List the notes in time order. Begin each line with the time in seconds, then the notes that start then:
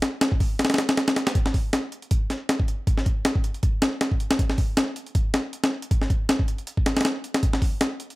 0.02 snare, closed hi-hat
0.21 snare, closed hi-hat
0.32 kick
0.40 kick, open hi-hat
0.59 snare, closed hi-hat
0.65 snare, closed hi-hat
0.70 snare, closed hi-hat
0.74 snare, closed hi-hat
0.78 snare, closed hi-hat
0.89 snare, closed hi-hat
0.97 snare, closed hi-hat
1.08 snare, closed hi-hat
1.16 snare, closed hi-hat
1.27 snare, closed hi-hat
1.35 kick, closed hi-hat
1.46 snare
1.54 kick, open hi-hat
1.73 snare, closed hi-hat
1.92 closed hi-hat
2.02 closed hi-hat
2.11 kick, closed hi-hat
2.30 snare, closed hi-hat
2.49 snare, closed hi-hat
2.60 kick
2.68 closed hi-hat
2.87 kick, closed hi-hat
2.98 snare
3.06 kick, closed hi-hat
3.25 snare, closed hi-hat
3.35 kick
3.44 closed hi-hat
3.54 closed hi-hat
3.63 kick, closed hi-hat
3.82 snare, closed hi-hat
4.01 snare, closed hi-hat
4.11 kick
4.20 closed hi-hat
4.31 snare, closed hi-hat
4.39 kick, closed hi-hat
4.50 snare
4.58 kick, open hi-hat
4.77 snare, closed hi-hat
4.96 closed hi-hat
5.07 closed hi-hat
5.15 kick, closed hi-hat
5.34 snare, closed hi-hat
5.53 closed hi-hat
5.64 snare, closed hi-hat
5.82 closed hi-hat
5.91 kick, closed hi-hat
6.02 snare
6.10 kick, closed hi-hat
6.29 snare, closed hi-hat
6.39 kick
6.48 closed hi-hat
6.58 closed hi-hat
6.67 closed hi-hat
6.77 kick
6.86 snare, closed hi-hat
6.97 snare, closed hi-hat
7.01 snare, closed hi-hat
7.05 snare, closed hi-hat
7.24 closed hi-hat
7.34 snare, closed hi-hat
7.43 kick, closed hi-hat
7.53 snare
7.62 kick, open hi-hat
7.81 snare, closed hi-hat
8.00 closed hi-hat
8.10 closed hi-hat